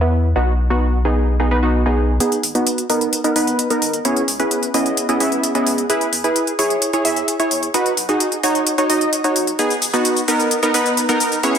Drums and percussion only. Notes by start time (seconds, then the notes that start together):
2.20 closed hi-hat
2.32 closed hi-hat
2.43 open hi-hat
2.55 closed hi-hat
2.67 closed hi-hat
2.78 closed hi-hat
2.90 open hi-hat
3.01 closed hi-hat
3.13 closed hi-hat
3.24 closed hi-hat
3.36 open hi-hat
3.47 closed hi-hat
3.59 closed hi-hat
3.70 closed hi-hat
3.82 open hi-hat
3.94 closed hi-hat
4.05 closed hi-hat
4.17 closed hi-hat
4.28 open hi-hat
4.40 closed hi-hat
4.51 closed hi-hat
4.63 closed hi-hat
4.74 open hi-hat
4.86 closed hi-hat
4.97 closed hi-hat
5.09 closed hi-hat
5.20 open hi-hat
5.32 closed hi-hat
5.43 closed hi-hat
5.55 closed hi-hat
5.67 open hi-hat
5.78 closed hi-hat
5.90 closed hi-hat
6.01 closed hi-hat
6.13 open hi-hat
6.24 closed hi-hat
6.36 closed hi-hat
6.47 closed hi-hat
6.59 open hi-hat
6.70 closed hi-hat
6.82 closed hi-hat
6.93 closed hi-hat
7.05 open hi-hat
7.16 closed hi-hat
7.28 closed hi-hat
7.40 closed hi-hat
7.51 open hi-hat
7.63 closed hi-hat
7.74 closed hi-hat
7.86 closed hi-hat
7.97 open hi-hat
8.09 closed hi-hat
8.20 closed hi-hat
8.32 closed hi-hat
8.43 open hi-hat
8.55 closed hi-hat
8.67 closed hi-hat
8.78 closed hi-hat
8.90 open hi-hat
9.01 closed hi-hat
9.13 closed hi-hat
9.24 closed hi-hat
9.36 open hi-hat
9.47 closed hi-hat
9.59 closed hi-hat, shaker
9.70 closed hi-hat, shaker
9.82 open hi-hat, shaker
9.93 closed hi-hat, shaker
10.05 closed hi-hat, shaker
10.17 closed hi-hat, shaker
10.28 open hi-hat, shaker
10.40 closed hi-hat, shaker
10.51 closed hi-hat, shaker
10.63 closed hi-hat, shaker
10.74 open hi-hat, shaker
10.86 closed hi-hat, shaker
10.97 closed hi-hat, shaker
11.09 closed hi-hat, shaker
11.20 open hi-hat, shaker
11.32 closed hi-hat, shaker
11.43 closed hi-hat, shaker
11.55 closed hi-hat